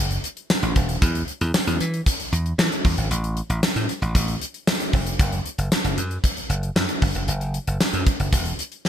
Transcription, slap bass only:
0.00 0.17 F#1 loud
0.63 0.73 A1 loud
0.76 0.96 D#1 medium
1.02 1.22 E2 loud
1.41 1.51 E2 loud
1.67 1.77 E2 loud
1.81 2.00 E3 medium
2.32 2.52 E2 medium
2.58 2.68 E3 loud
2.85 2.95 E2 medium
2.98 3.07 G#1 medium
3.11 3.40 A1 loud
3.50 3.60 A1 medium
3.76 3.86 A2 loud
4.02 4.12 A1 medium
4.15 4.35 A1 loud
4.93 5.13 F1 medium
5.19 5.39 F#1 loud
5.58 5.68 F#1 medium
5.84 5.94 F#1 loud
5.97 6.17 F#2 loud
6.49 6.69 F#1 medium
6.76 6.86 F#2 loud
7.02 7.12 G1 loud
7.15 7.25 F1 medium
7.28 7.57 F#1 loud
7.67 7.77 F#1 medium
7.80 muted slap bass stroke soft
7.93 8.03 F#2 medium
8.20 8.29 F#1 medium
8.33 8.52 E1 loud

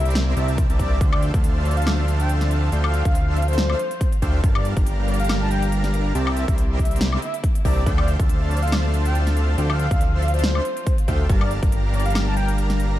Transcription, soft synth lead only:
0.37 0.50 E5 loud
0.79 1.05 D5 medium
1.12 1.24 D5 medium
1.65 1.74 D5 medium
1.77 1.88 F5 medium
2.20 2.31 G5 medium
2.84 3.27 F5 medium
3.36 3.46 F5 medium
3.48 4.08 C5 loud
4.55 4.67 D5 medium
5.08 5.17 D5 medium
5.20 5.31 F5 medium
5.41 5.49 A5 loud
5.51 5.64 G5 loud
6.37 6.44 E5 medium
6.48 6.54 E5 medium
6.79 6.92 E5 medium
7.22 7.35 E5 medium
7.65 7.91 D5 medium
7.98 8.09 D5 medium
8.51 8.60 D5 medium
8.62 8.74 F5 medium
9.05 9.17 G5 medium
9.70 10.13 F5 medium
10.22 10.32 F5 medium
10.34 10.94 C5 medium
11.41 11.52 D5 medium
11.94 12.03 D5 medium
12.06 12.17 F5 medium
12.27 12.35 A5 loud
12.37 12.50 G5 medium

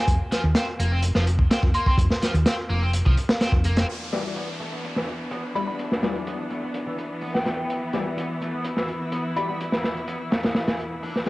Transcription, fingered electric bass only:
0.08 0.17 F1 loud
0.44 0.52 D#2 medium
0.79 1.10 F1 medium
1.15 1.46 F1 loud
1.63 1.71 F1 medium
1.98 2.07 F1 loud
2.34 2.43 D#2 loud
2.70 3.01 F1 medium
3.06 3.14 C2 medium
3.52 3.83 F1 medium

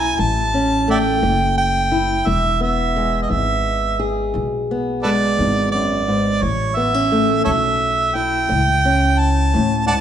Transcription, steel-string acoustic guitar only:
0.00 0.87 A3 medium
0.00 0.53 C#4 medium
0.00 1.91 E4 medium
0.19 0.81 A2 medium
0.54 2.23 C#4 medium
0.88 2.23 A3 medium
1.23 1.85 E3 medium
1.92 3.99 E4 medium
2.26 2.89 E2 medium
2.60 4.69 B3 medium
2.96 5.03 G#3 medium
3.29 3.93 E3 medium
3.99 6.38 G#4 medium
4.34 4.97 E2 medium
4.71 6.44 B3 medium
5.05 6.39 G#3 medium
5.39 5.73 E2 medium
5.74 6.08 F#2 medium
6.08 6.43 G#2 medium
6.43 7.05 A2 medium
6.77 6.94 B3 medium
6.94 8.84 C#4 soft
7.12 9.20 A3 medium
7.45 8.08 E3 medium
8.15 10.01 E4 medium
8.49 9.13 A2 medium
8.85 10.01 C#4 medium
9.54 9.89 A2 medium
9.87 10.01 G#2 medium

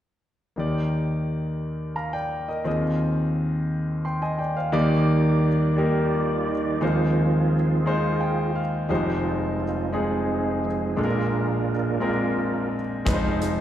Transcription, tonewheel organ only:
4.74 6.78 D#3 soft
4.74 6.78 G3 soft
4.74 6.79 D5 soft
5.78 6.14 G4 medium
6.14 6.49 F4 medium
6.49 6.84 D#4 medium
6.83 7.82 D#3 soft
6.83 7.83 F3 soft
6.83 7.83 C4 medium
6.83 8.53 F4 medium
6.83 8.53 G#4 medium
8.89 9.36 F3 soft
8.89 9.36 G#3 soft
8.89 9.90 C4 soft
8.89 9.90 D#4 soft
8.89 9.23 G4 medium
9.25 9.40 F4 medium
9.60 9.92 F4 medium
9.94 10.94 C4 medium
9.94 10.64 D#4 medium
9.94 11.02 G#4 medium
10.64 10.95 F3 soft
10.64 10.96 G#3 soft
10.64 10.96 D#4 soft
10.99 11.99 A#2 soft
10.99 11.99 G#3 soft
10.99 11.99 D4 medium
10.99 12.68 F4 medium
10.99 12.69 A#4 medium
13.07 13.53 F3 soft
13.07 13.53 G#3 soft
13.07 13.54 D#4 soft

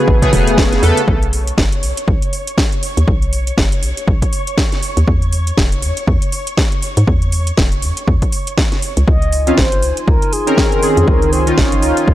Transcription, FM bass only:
0.08 0.17 A1 medium
0.33 0.77 E1 loud
0.83 0.92 E2 medium
1.08 1.52 B1 loud
1.58 1.84 F#1 medium
1.83 1.92 B1 medium
2.08 2.17 B1 medium
2.97 3.04 D#2 medium
3.08 3.52 B1 loud
3.58 3.84 F#1 medium
3.83 3.92 B1 medium
4.08 4.17 B1 medium
4.97 5.04 D#2 medium
5.08 5.52 E2 loud
5.58 5.84 E1 medium
5.83 5.92 E2 medium
6.08 6.17 E2 medium
6.97 7.04 G#2 medium
7.08 7.52 E2 loud
7.58 7.84 E1 medium
7.83 7.92 E2 medium
8.08 8.17 E2 medium
8.97 9.04 C#2 medium
9.08 9.52 C#2 loud
9.58 9.84 G#1 medium
9.83 9.92 C#2 medium
10.08 10.17 C#2 medium
10.97 11.04 F2 medium
11.08 11.52 C#2 loud
11.58 11.84 G#1 medium
11.83 11.92 C#2 medium
12.08 12.14 C#2 medium

